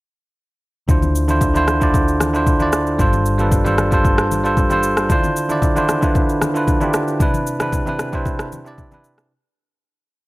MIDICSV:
0, 0, Header, 1, 4, 480
1, 0, Start_track
1, 0, Tempo, 526316
1, 810, Time_signature, 4, 2, 24, 8
1, 9368, End_track
2, 0, Start_track
2, 0, Title_t, "Tine electric piano"
2, 0, Program_c, 0, 4
2, 800, Note_on_c, 0, 50, 78
2, 807, Note_on_c, 0, 62, 74
2, 814, Note_on_c, 0, 64, 73
2, 821, Note_on_c, 0, 65, 75
2, 828, Note_on_c, 0, 72, 91
2, 1004, Control_c, 0, 64, 127
2, 1095, Note_off_c, 0, 50, 0
2, 1098, Note_off_c, 0, 62, 0
2, 1102, Note_off_c, 0, 64, 0
2, 1105, Note_off_c, 0, 65, 0
2, 1109, Note_off_c, 0, 72, 0
2, 1165, Note_on_c, 0, 50, 83
2, 1171, Note_on_c, 0, 62, 76
2, 1179, Note_on_c, 0, 64, 77
2, 1186, Note_on_c, 0, 65, 73
2, 1192, Note_on_c, 0, 72, 90
2, 1360, Note_off_c, 0, 50, 0
2, 1363, Note_off_c, 0, 62, 0
2, 1367, Note_off_c, 0, 64, 0
2, 1370, Note_off_c, 0, 65, 0
2, 1373, Note_off_c, 0, 72, 0
2, 1404, Note_on_c, 0, 50, 86
2, 1411, Note_on_c, 0, 62, 79
2, 1418, Note_on_c, 0, 64, 80
2, 1425, Note_on_c, 0, 65, 82
2, 1431, Note_on_c, 0, 72, 99
2, 1599, Note_off_c, 0, 50, 0
2, 1603, Note_off_c, 0, 62, 0
2, 1606, Note_off_c, 0, 64, 0
2, 1610, Note_off_c, 0, 65, 0
2, 1613, Note_off_c, 0, 72, 0
2, 1644, Note_on_c, 0, 50, 86
2, 1651, Note_on_c, 0, 62, 77
2, 1658, Note_on_c, 0, 64, 77
2, 1664, Note_on_c, 0, 65, 78
2, 1671, Note_on_c, 0, 74, 94
2, 2029, Note_off_c, 0, 50, 0
2, 2033, Note_off_c, 0, 62, 0
2, 2036, Note_off_c, 0, 64, 0
2, 2039, Note_off_c, 0, 65, 0
2, 2043, Note_off_c, 0, 74, 0
2, 2125, Note_on_c, 0, 50, 83
2, 2131, Note_on_c, 0, 62, 78
2, 2138, Note_on_c, 0, 64, 80
2, 2145, Note_on_c, 0, 65, 77
2, 2152, Note_on_c, 0, 72, 92
2, 2319, Note_off_c, 0, 50, 0
2, 2323, Note_off_c, 0, 62, 0
2, 2326, Note_off_c, 0, 64, 0
2, 2330, Note_off_c, 0, 65, 0
2, 2333, Note_off_c, 0, 72, 0
2, 2364, Note_on_c, 0, 50, 82
2, 2371, Note_on_c, 0, 62, 75
2, 2378, Note_on_c, 0, 64, 74
2, 2384, Note_on_c, 0, 65, 74
2, 2392, Note_on_c, 0, 74, 88
2, 2655, Note_off_c, 0, 50, 0
2, 2659, Note_off_c, 0, 62, 0
2, 2662, Note_off_c, 0, 64, 0
2, 2665, Note_off_c, 0, 65, 0
2, 2669, Note_off_c, 0, 74, 0
2, 2720, Note_on_c, 0, 55, 81
2, 2727, Note_on_c, 0, 62, 73
2, 2734, Note_on_c, 0, 65, 80
2, 2740, Control_c, 0, 64, 0
2, 2740, Note_on_c, 0, 69, 75
2, 2747, Note_on_c, 0, 72, 90
2, 2885, Control_c, 0, 64, 127
2, 3015, Note_off_c, 0, 55, 0
2, 3018, Note_off_c, 0, 62, 0
2, 3022, Note_off_c, 0, 65, 0
2, 3025, Note_off_c, 0, 69, 0
2, 3028, Note_off_c, 0, 72, 0
2, 3084, Note_on_c, 0, 55, 86
2, 3091, Note_on_c, 0, 62, 78
2, 3098, Note_on_c, 0, 65, 77
2, 3105, Note_on_c, 0, 69, 76
2, 3111, Note_on_c, 0, 71, 88
2, 3279, Note_off_c, 0, 55, 0
2, 3282, Note_off_c, 0, 62, 0
2, 3286, Note_off_c, 0, 65, 0
2, 3289, Note_off_c, 0, 69, 0
2, 3293, Note_off_c, 0, 71, 0
2, 3325, Note_on_c, 0, 55, 88
2, 3332, Note_on_c, 0, 62, 80
2, 3338, Note_on_c, 0, 65, 78
2, 3345, Note_on_c, 0, 69, 82
2, 3352, Note_on_c, 0, 72, 97
2, 3519, Note_off_c, 0, 55, 0
2, 3523, Note_off_c, 0, 62, 0
2, 3526, Note_off_c, 0, 65, 0
2, 3530, Note_off_c, 0, 69, 0
2, 3533, Note_off_c, 0, 72, 0
2, 3564, Note_on_c, 0, 55, 85
2, 3571, Note_on_c, 0, 62, 81
2, 3578, Note_on_c, 0, 65, 80
2, 3585, Note_on_c, 0, 69, 81
2, 3592, Note_on_c, 0, 72, 96
2, 3949, Note_off_c, 0, 55, 0
2, 3953, Note_off_c, 0, 62, 0
2, 3956, Note_off_c, 0, 65, 0
2, 3960, Note_off_c, 0, 69, 0
2, 3963, Note_off_c, 0, 72, 0
2, 4045, Note_on_c, 0, 55, 82
2, 4051, Note_on_c, 0, 62, 74
2, 4058, Note_on_c, 0, 65, 80
2, 4065, Note_on_c, 0, 69, 75
2, 4072, Note_on_c, 0, 72, 96
2, 4240, Note_off_c, 0, 55, 0
2, 4243, Note_off_c, 0, 62, 0
2, 4246, Note_off_c, 0, 65, 0
2, 4250, Note_off_c, 0, 69, 0
2, 4253, Note_off_c, 0, 72, 0
2, 4283, Note_on_c, 0, 55, 82
2, 4290, Note_on_c, 0, 62, 76
2, 4297, Note_on_c, 0, 65, 78
2, 4304, Note_on_c, 0, 69, 77
2, 4311, Note_on_c, 0, 72, 94
2, 4575, Note_off_c, 0, 55, 0
2, 4578, Note_off_c, 0, 62, 0
2, 4582, Note_off_c, 0, 65, 0
2, 4585, Note_off_c, 0, 69, 0
2, 4589, Note_off_c, 0, 72, 0
2, 4640, Note_on_c, 0, 50, 82
2, 4647, Note_on_c, 0, 62, 75
2, 4654, Note_on_c, 0, 64, 78
2, 4660, Control_c, 0, 64, 0
2, 4661, Note_on_c, 0, 65, 76
2, 4668, Note_on_c, 0, 72, 93
2, 4809, Control_c, 0, 64, 127
2, 4935, Note_off_c, 0, 50, 0
2, 4938, Note_off_c, 0, 62, 0
2, 4942, Note_off_c, 0, 64, 0
2, 4945, Note_off_c, 0, 65, 0
2, 4949, Note_off_c, 0, 72, 0
2, 5005, Note_on_c, 0, 50, 86
2, 5012, Note_on_c, 0, 62, 74
2, 5018, Note_on_c, 0, 64, 80
2, 5025, Note_on_c, 0, 65, 75
2, 5032, Note_on_c, 0, 74, 93
2, 5200, Note_off_c, 0, 50, 0
2, 5203, Note_off_c, 0, 62, 0
2, 5206, Note_off_c, 0, 64, 0
2, 5210, Note_off_c, 0, 65, 0
2, 5213, Note_off_c, 0, 74, 0
2, 5245, Note_on_c, 0, 50, 89
2, 5252, Note_on_c, 0, 62, 83
2, 5259, Note_on_c, 0, 64, 81
2, 5266, Note_on_c, 0, 65, 78
2, 5272, Note_on_c, 0, 72, 96
2, 5440, Note_off_c, 0, 50, 0
2, 5443, Note_off_c, 0, 62, 0
2, 5447, Note_off_c, 0, 64, 0
2, 5450, Note_off_c, 0, 65, 0
2, 5453, Note_off_c, 0, 72, 0
2, 5485, Note_on_c, 0, 50, 86
2, 5492, Note_on_c, 0, 62, 80
2, 5499, Note_on_c, 0, 64, 82
2, 5506, Note_on_c, 0, 65, 83
2, 5513, Note_on_c, 0, 71, 96
2, 5870, Note_off_c, 0, 50, 0
2, 5873, Note_off_c, 0, 62, 0
2, 5877, Note_off_c, 0, 64, 0
2, 5880, Note_off_c, 0, 65, 0
2, 5884, Note_off_c, 0, 71, 0
2, 5965, Note_on_c, 0, 50, 83
2, 5972, Note_on_c, 0, 62, 78
2, 5979, Note_on_c, 0, 64, 76
2, 5986, Note_on_c, 0, 65, 79
2, 5993, Note_on_c, 0, 71, 95
2, 6160, Note_off_c, 0, 50, 0
2, 6163, Note_off_c, 0, 62, 0
2, 6167, Note_off_c, 0, 64, 0
2, 6170, Note_off_c, 0, 65, 0
2, 6174, Note_off_c, 0, 71, 0
2, 6205, Note_on_c, 0, 50, 87
2, 6212, Note_on_c, 0, 62, 75
2, 6219, Note_on_c, 0, 64, 76
2, 6226, Note_on_c, 0, 65, 81
2, 6233, Note_on_c, 0, 67, 94
2, 6496, Note_off_c, 0, 50, 0
2, 6499, Note_off_c, 0, 62, 0
2, 6503, Note_off_c, 0, 64, 0
2, 6506, Note_off_c, 0, 65, 0
2, 6510, Note_off_c, 0, 67, 0
2, 6560, Note_on_c, 0, 48, 80
2, 6567, Note_on_c, 0, 60, 76
2, 6574, Note_on_c, 0, 62, 76
2, 6581, Note_on_c, 0, 64, 75
2, 6582, Control_c, 0, 64, 0
2, 6588, Note_on_c, 0, 71, 92
2, 6764, Control_c, 0, 64, 127
2, 6855, Note_off_c, 0, 48, 0
2, 6858, Note_off_c, 0, 60, 0
2, 6862, Note_off_c, 0, 62, 0
2, 6865, Note_off_c, 0, 64, 0
2, 6869, Note_off_c, 0, 71, 0
2, 6925, Note_on_c, 0, 48, 86
2, 6932, Note_on_c, 0, 60, 77
2, 6939, Note_on_c, 0, 62, 79
2, 6946, Note_on_c, 0, 64, 76
2, 6953, Note_on_c, 0, 71, 92
2, 7120, Note_off_c, 0, 48, 0
2, 7123, Note_off_c, 0, 60, 0
2, 7127, Note_off_c, 0, 62, 0
2, 7130, Note_off_c, 0, 64, 0
2, 7134, Note_off_c, 0, 71, 0
2, 7165, Note_on_c, 0, 48, 86
2, 7172, Note_on_c, 0, 60, 81
2, 7179, Note_on_c, 0, 62, 80
2, 7186, Note_on_c, 0, 64, 80
2, 7193, Note_on_c, 0, 71, 99
2, 7360, Note_off_c, 0, 48, 0
2, 7363, Note_off_c, 0, 60, 0
2, 7367, Note_off_c, 0, 62, 0
2, 7370, Note_off_c, 0, 64, 0
2, 7374, Note_off_c, 0, 71, 0
2, 7406, Note_on_c, 0, 48, 86
2, 7413, Note_on_c, 0, 60, 81
2, 7420, Note_on_c, 0, 62, 80
2, 7427, Note_on_c, 0, 64, 80
2, 7433, Note_on_c, 0, 72, 99
2, 7790, Note_off_c, 0, 48, 0
2, 7794, Note_off_c, 0, 60, 0
2, 7797, Note_off_c, 0, 62, 0
2, 7801, Note_off_c, 0, 64, 0
2, 7804, Note_off_c, 0, 72, 0
2, 7885, Note_on_c, 0, 48, 85
2, 7892, Note_on_c, 0, 60, 79
2, 7899, Note_on_c, 0, 62, 77
2, 7906, Note_on_c, 0, 64, 79
2, 7913, Note_on_c, 0, 74, 96
2, 8080, Note_off_c, 0, 48, 0
2, 8083, Note_off_c, 0, 60, 0
2, 8087, Note_off_c, 0, 62, 0
2, 8090, Note_off_c, 0, 64, 0
2, 8094, Note_off_c, 0, 74, 0
2, 8125, Note_on_c, 0, 48, 85
2, 8132, Note_on_c, 0, 60, 78
2, 8139, Note_on_c, 0, 62, 79
2, 8146, Note_on_c, 0, 64, 78
2, 8153, Note_on_c, 0, 71, 92
2, 8416, Note_off_c, 0, 48, 0
2, 8419, Note_off_c, 0, 60, 0
2, 8423, Note_off_c, 0, 62, 0
2, 8426, Note_off_c, 0, 64, 0
2, 8430, Note_off_c, 0, 71, 0
2, 8503, Control_c, 0, 64, 0
2, 9368, End_track
3, 0, Start_track
3, 0, Title_t, "Fingered electric bass"
3, 0, Program_c, 1, 33
3, 809, Note_on_c, 1, 38, 78
3, 2693, Note_off_c, 1, 38, 0
3, 2729, Note_on_c, 1, 31, 83
3, 4613, Note_off_c, 1, 31, 0
3, 9368, End_track
4, 0, Start_track
4, 0, Title_t, "Drums"
4, 808, Note_on_c, 9, 64, 69
4, 809, Note_on_c, 9, 36, 110
4, 810, Note_on_c, 9, 82, 83
4, 900, Note_off_c, 9, 64, 0
4, 901, Note_off_c, 9, 36, 0
4, 901, Note_off_c, 9, 82, 0
4, 934, Note_on_c, 9, 63, 74
4, 937, Note_on_c, 9, 82, 54
4, 1025, Note_off_c, 9, 63, 0
4, 1028, Note_off_c, 9, 82, 0
4, 1052, Note_on_c, 9, 82, 91
4, 1143, Note_off_c, 9, 82, 0
4, 1172, Note_on_c, 9, 82, 54
4, 1176, Note_on_c, 9, 63, 59
4, 1263, Note_off_c, 9, 82, 0
4, 1267, Note_off_c, 9, 63, 0
4, 1285, Note_on_c, 9, 64, 80
4, 1288, Note_on_c, 9, 36, 90
4, 1290, Note_on_c, 9, 82, 87
4, 1376, Note_off_c, 9, 64, 0
4, 1380, Note_off_c, 9, 36, 0
4, 1382, Note_off_c, 9, 82, 0
4, 1418, Note_on_c, 9, 82, 51
4, 1419, Note_on_c, 9, 63, 76
4, 1509, Note_off_c, 9, 82, 0
4, 1510, Note_off_c, 9, 63, 0
4, 1529, Note_on_c, 9, 37, 90
4, 1529, Note_on_c, 9, 82, 84
4, 1530, Note_on_c, 9, 63, 65
4, 1620, Note_off_c, 9, 82, 0
4, 1621, Note_off_c, 9, 37, 0
4, 1621, Note_off_c, 9, 63, 0
4, 1654, Note_on_c, 9, 82, 53
4, 1657, Note_on_c, 9, 36, 96
4, 1745, Note_off_c, 9, 82, 0
4, 1748, Note_off_c, 9, 36, 0
4, 1768, Note_on_c, 9, 64, 76
4, 1771, Note_on_c, 9, 36, 108
4, 1774, Note_on_c, 9, 82, 65
4, 1859, Note_off_c, 9, 64, 0
4, 1862, Note_off_c, 9, 36, 0
4, 1865, Note_off_c, 9, 82, 0
4, 1898, Note_on_c, 9, 82, 52
4, 1989, Note_off_c, 9, 82, 0
4, 2010, Note_on_c, 9, 37, 91
4, 2014, Note_on_c, 9, 82, 91
4, 2016, Note_on_c, 9, 63, 69
4, 2102, Note_off_c, 9, 37, 0
4, 2105, Note_off_c, 9, 82, 0
4, 2107, Note_off_c, 9, 63, 0
4, 2139, Note_on_c, 9, 82, 52
4, 2230, Note_off_c, 9, 82, 0
4, 2247, Note_on_c, 9, 64, 71
4, 2250, Note_on_c, 9, 36, 90
4, 2250, Note_on_c, 9, 82, 62
4, 2338, Note_off_c, 9, 64, 0
4, 2341, Note_off_c, 9, 36, 0
4, 2341, Note_off_c, 9, 82, 0
4, 2369, Note_on_c, 9, 82, 49
4, 2374, Note_on_c, 9, 63, 70
4, 2460, Note_off_c, 9, 82, 0
4, 2465, Note_off_c, 9, 63, 0
4, 2485, Note_on_c, 9, 82, 85
4, 2488, Note_on_c, 9, 37, 90
4, 2576, Note_off_c, 9, 82, 0
4, 2579, Note_off_c, 9, 37, 0
4, 2614, Note_on_c, 9, 82, 52
4, 2705, Note_off_c, 9, 82, 0
4, 2729, Note_on_c, 9, 36, 110
4, 2729, Note_on_c, 9, 64, 67
4, 2729, Note_on_c, 9, 82, 82
4, 2820, Note_off_c, 9, 36, 0
4, 2820, Note_off_c, 9, 64, 0
4, 2821, Note_off_c, 9, 82, 0
4, 2854, Note_on_c, 9, 63, 74
4, 2855, Note_on_c, 9, 82, 55
4, 2946, Note_off_c, 9, 63, 0
4, 2946, Note_off_c, 9, 82, 0
4, 2970, Note_on_c, 9, 82, 94
4, 3061, Note_off_c, 9, 82, 0
4, 3090, Note_on_c, 9, 82, 54
4, 3096, Note_on_c, 9, 63, 57
4, 3182, Note_off_c, 9, 82, 0
4, 3187, Note_off_c, 9, 63, 0
4, 3205, Note_on_c, 9, 64, 83
4, 3208, Note_on_c, 9, 36, 85
4, 3208, Note_on_c, 9, 82, 91
4, 3296, Note_off_c, 9, 64, 0
4, 3299, Note_off_c, 9, 36, 0
4, 3299, Note_off_c, 9, 82, 0
4, 3337, Note_on_c, 9, 82, 49
4, 3339, Note_on_c, 9, 63, 76
4, 3428, Note_off_c, 9, 82, 0
4, 3430, Note_off_c, 9, 63, 0
4, 3448, Note_on_c, 9, 82, 83
4, 3449, Note_on_c, 9, 37, 90
4, 3450, Note_on_c, 9, 63, 66
4, 3539, Note_off_c, 9, 82, 0
4, 3540, Note_off_c, 9, 37, 0
4, 3541, Note_off_c, 9, 63, 0
4, 3573, Note_on_c, 9, 82, 51
4, 3576, Note_on_c, 9, 36, 96
4, 3664, Note_off_c, 9, 82, 0
4, 3668, Note_off_c, 9, 36, 0
4, 3688, Note_on_c, 9, 64, 76
4, 3691, Note_on_c, 9, 36, 107
4, 3693, Note_on_c, 9, 82, 64
4, 3779, Note_off_c, 9, 64, 0
4, 3782, Note_off_c, 9, 36, 0
4, 3784, Note_off_c, 9, 82, 0
4, 3814, Note_on_c, 9, 37, 99
4, 3818, Note_on_c, 9, 82, 49
4, 3905, Note_off_c, 9, 37, 0
4, 3909, Note_off_c, 9, 82, 0
4, 3934, Note_on_c, 9, 82, 93
4, 3936, Note_on_c, 9, 63, 73
4, 4025, Note_off_c, 9, 82, 0
4, 4028, Note_off_c, 9, 63, 0
4, 4058, Note_on_c, 9, 82, 51
4, 4150, Note_off_c, 9, 82, 0
4, 4167, Note_on_c, 9, 64, 71
4, 4169, Note_on_c, 9, 36, 95
4, 4169, Note_on_c, 9, 82, 64
4, 4258, Note_off_c, 9, 64, 0
4, 4260, Note_off_c, 9, 82, 0
4, 4261, Note_off_c, 9, 36, 0
4, 4289, Note_on_c, 9, 82, 54
4, 4295, Note_on_c, 9, 63, 72
4, 4381, Note_off_c, 9, 82, 0
4, 4386, Note_off_c, 9, 63, 0
4, 4405, Note_on_c, 9, 82, 87
4, 4496, Note_off_c, 9, 82, 0
4, 4533, Note_on_c, 9, 37, 93
4, 4534, Note_on_c, 9, 82, 54
4, 4624, Note_off_c, 9, 37, 0
4, 4625, Note_off_c, 9, 82, 0
4, 4648, Note_on_c, 9, 64, 71
4, 4649, Note_on_c, 9, 36, 117
4, 4650, Note_on_c, 9, 82, 85
4, 4740, Note_off_c, 9, 64, 0
4, 4741, Note_off_c, 9, 36, 0
4, 4742, Note_off_c, 9, 82, 0
4, 4774, Note_on_c, 9, 63, 76
4, 4777, Note_on_c, 9, 82, 55
4, 4865, Note_off_c, 9, 63, 0
4, 4868, Note_off_c, 9, 82, 0
4, 4891, Note_on_c, 9, 82, 94
4, 4983, Note_off_c, 9, 82, 0
4, 5012, Note_on_c, 9, 82, 58
4, 5016, Note_on_c, 9, 63, 56
4, 5103, Note_off_c, 9, 82, 0
4, 5107, Note_off_c, 9, 63, 0
4, 5125, Note_on_c, 9, 64, 84
4, 5128, Note_on_c, 9, 36, 87
4, 5130, Note_on_c, 9, 82, 84
4, 5216, Note_off_c, 9, 64, 0
4, 5220, Note_off_c, 9, 36, 0
4, 5221, Note_off_c, 9, 82, 0
4, 5257, Note_on_c, 9, 82, 51
4, 5259, Note_on_c, 9, 63, 75
4, 5349, Note_off_c, 9, 82, 0
4, 5350, Note_off_c, 9, 63, 0
4, 5369, Note_on_c, 9, 37, 87
4, 5369, Note_on_c, 9, 82, 85
4, 5370, Note_on_c, 9, 63, 65
4, 5460, Note_off_c, 9, 82, 0
4, 5461, Note_off_c, 9, 37, 0
4, 5461, Note_off_c, 9, 63, 0
4, 5493, Note_on_c, 9, 82, 52
4, 5497, Note_on_c, 9, 36, 100
4, 5585, Note_off_c, 9, 82, 0
4, 5588, Note_off_c, 9, 36, 0
4, 5608, Note_on_c, 9, 64, 80
4, 5611, Note_on_c, 9, 36, 109
4, 5614, Note_on_c, 9, 82, 64
4, 5699, Note_off_c, 9, 64, 0
4, 5703, Note_off_c, 9, 36, 0
4, 5705, Note_off_c, 9, 82, 0
4, 5738, Note_on_c, 9, 82, 51
4, 5829, Note_off_c, 9, 82, 0
4, 5851, Note_on_c, 9, 37, 93
4, 5854, Note_on_c, 9, 82, 94
4, 5856, Note_on_c, 9, 63, 74
4, 5942, Note_off_c, 9, 37, 0
4, 5945, Note_off_c, 9, 82, 0
4, 5947, Note_off_c, 9, 63, 0
4, 5979, Note_on_c, 9, 82, 52
4, 6070, Note_off_c, 9, 82, 0
4, 6087, Note_on_c, 9, 64, 70
4, 6090, Note_on_c, 9, 36, 93
4, 6090, Note_on_c, 9, 82, 61
4, 6178, Note_off_c, 9, 64, 0
4, 6181, Note_off_c, 9, 36, 0
4, 6181, Note_off_c, 9, 82, 0
4, 6209, Note_on_c, 9, 82, 50
4, 6213, Note_on_c, 9, 63, 73
4, 6301, Note_off_c, 9, 82, 0
4, 6305, Note_off_c, 9, 63, 0
4, 6325, Note_on_c, 9, 82, 86
4, 6328, Note_on_c, 9, 37, 90
4, 6416, Note_off_c, 9, 82, 0
4, 6419, Note_off_c, 9, 37, 0
4, 6454, Note_on_c, 9, 82, 51
4, 6545, Note_off_c, 9, 82, 0
4, 6568, Note_on_c, 9, 64, 72
4, 6569, Note_on_c, 9, 36, 113
4, 6569, Note_on_c, 9, 82, 86
4, 6659, Note_off_c, 9, 64, 0
4, 6660, Note_off_c, 9, 36, 0
4, 6661, Note_off_c, 9, 82, 0
4, 6693, Note_on_c, 9, 63, 75
4, 6696, Note_on_c, 9, 82, 57
4, 6785, Note_off_c, 9, 63, 0
4, 6787, Note_off_c, 9, 82, 0
4, 6810, Note_on_c, 9, 82, 96
4, 6902, Note_off_c, 9, 82, 0
4, 6931, Note_on_c, 9, 82, 57
4, 6932, Note_on_c, 9, 37, 91
4, 6935, Note_on_c, 9, 63, 58
4, 7022, Note_off_c, 9, 82, 0
4, 7023, Note_off_c, 9, 37, 0
4, 7026, Note_off_c, 9, 63, 0
4, 7044, Note_on_c, 9, 64, 81
4, 7048, Note_on_c, 9, 36, 91
4, 7049, Note_on_c, 9, 82, 89
4, 7135, Note_off_c, 9, 64, 0
4, 7139, Note_off_c, 9, 36, 0
4, 7140, Note_off_c, 9, 82, 0
4, 7177, Note_on_c, 9, 82, 51
4, 7178, Note_on_c, 9, 63, 74
4, 7268, Note_off_c, 9, 82, 0
4, 7269, Note_off_c, 9, 63, 0
4, 7288, Note_on_c, 9, 82, 80
4, 7289, Note_on_c, 9, 37, 86
4, 7289, Note_on_c, 9, 63, 66
4, 7379, Note_off_c, 9, 82, 0
4, 7380, Note_off_c, 9, 37, 0
4, 7380, Note_off_c, 9, 63, 0
4, 7412, Note_on_c, 9, 82, 52
4, 7416, Note_on_c, 9, 36, 99
4, 7504, Note_off_c, 9, 82, 0
4, 7507, Note_off_c, 9, 36, 0
4, 7527, Note_on_c, 9, 64, 74
4, 7531, Note_on_c, 9, 36, 102
4, 7532, Note_on_c, 9, 82, 69
4, 7619, Note_off_c, 9, 64, 0
4, 7622, Note_off_c, 9, 36, 0
4, 7624, Note_off_c, 9, 82, 0
4, 7653, Note_on_c, 9, 37, 101
4, 7657, Note_on_c, 9, 82, 48
4, 7744, Note_off_c, 9, 37, 0
4, 7748, Note_off_c, 9, 82, 0
4, 7773, Note_on_c, 9, 82, 94
4, 7775, Note_on_c, 9, 63, 73
4, 7864, Note_off_c, 9, 82, 0
4, 7867, Note_off_c, 9, 63, 0
4, 7899, Note_on_c, 9, 82, 51
4, 7990, Note_off_c, 9, 82, 0
4, 8007, Note_on_c, 9, 64, 70
4, 8010, Note_on_c, 9, 36, 96
4, 8010, Note_on_c, 9, 82, 64
4, 8098, Note_off_c, 9, 64, 0
4, 8101, Note_off_c, 9, 36, 0
4, 8101, Note_off_c, 9, 82, 0
4, 8129, Note_on_c, 9, 82, 52
4, 8134, Note_on_c, 9, 63, 73
4, 8221, Note_off_c, 9, 82, 0
4, 8225, Note_off_c, 9, 63, 0
4, 8245, Note_on_c, 9, 82, 91
4, 8336, Note_off_c, 9, 82, 0
4, 8372, Note_on_c, 9, 37, 92
4, 8373, Note_on_c, 9, 82, 52
4, 8463, Note_off_c, 9, 37, 0
4, 8464, Note_off_c, 9, 82, 0
4, 9368, End_track
0, 0, End_of_file